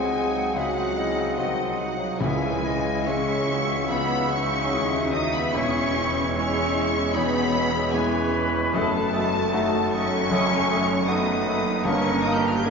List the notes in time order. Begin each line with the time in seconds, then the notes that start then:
Already playing: C#2 C#3 F#3 G#3 C4 E4 F#4 G#4 D#5 F#5 G#5
0.13 D#4
0.54 C#2 C#3 F#3 G#3 D#4 F#4 E5 F#5
0.97 G#3 E4 D#5
1.37 C2 D#3 F#3 G#3 C4 D#4 F#4 D#5 F#5
1.78 F#3 F#5
2.19 C#2 C#3 E3 G#3 C#4 E4 E5 G#5
2.65 D#5
3.06 G#3 C#4 E4 G#4 E5 C#6
3.50 F#3
3.89 C#2 C#3 B3 D#4 G#4 F#5 B5
4.31 C#4 C#6
4.72 D#2 G#3 C#4 E4 F#4 D#5 E5
5.14 D#4 D#6
5.34 B3 B5
5.54 E1 E2 E3 G#3 C#4 E4 C#5 C#6
6.35 G#3 C#4 E4 G#4 C#5 E5 C#6
7.14 E1 E2 F#3 B3 D#4 G#4 C#5 D#5 B5
7.55 C#4
7.92 E3 G#3 B3 C#4 G#4 B4 C#5 G#5
8.73 F#1 F#2 A3 A4 D#5 A5
9.13 A3 F#4 D#5
9.53 D#3 A3 D#4 F#4 A4 D#5
9.93 A3 C#4 D#5 C#6
10.30 F#1 F#2 A3 A4 D#5
10.70 A3 C#5 D#5
11.07 A3 B3 D#4 F#4 B4 D#5 D#6
11.47 A3 A#3 D#5
11.84 G1 G2 A#3 C#4 A#4 D#5 C#6
11.89 D#3 A#3
12.21 D#4 D#6
12.27 A#3 D#5
12.35 G4 G6
12.46 F4 F6
12.55 G4 G6
12.63 A#3 D#4 G#4 D#5 G#6